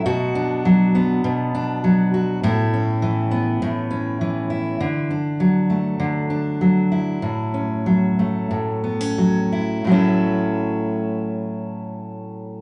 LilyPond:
\new Staff \with { instrumentName = "Steel-string acoustic guitar" } { \time 4/4 \key a \major \tempo 4 = 100 <b, fis'>8 d'8 fis8 b8 b,8 d'8 fis8 fis'8 | <a, e'>8 cis'8 e8 b8 a,8 cis'8 e8 e'8 | d8 d'8 fis8 a8 d8 d'8 fis8 e'8 | a,8 cis'8 fis8 a8 a,8 b16 cis'16 fis8 e'8 |
<a, fis a cis' e'>1 | }